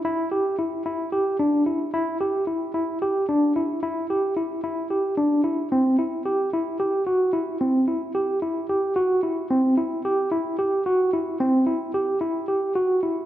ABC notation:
X:1
M:7/8
L:1/8
Q:1/4=111
K:Clyd
V:1 name="Tine electric piano"
E G E E G D E | E G E E G D E | E G E E G D E | C E G E G F E |
C E G E G F E | C E G E G F E | C E G E G F E |]